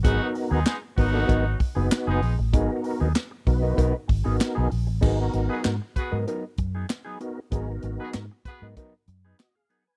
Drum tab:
CC |--------|--------|x-------|--------|
HH |xoxoxoxo|xoxoxoxo|-xxxxxxx|xxxxxxxx|
CP |--x---x-|--x---x-|--x---x-|--x---x-|
SD |--o---o-|--o---o-|--o---o-|--o---o-|
BD |o--ooo--|o--ooo--|o--o-o--|o--oo---|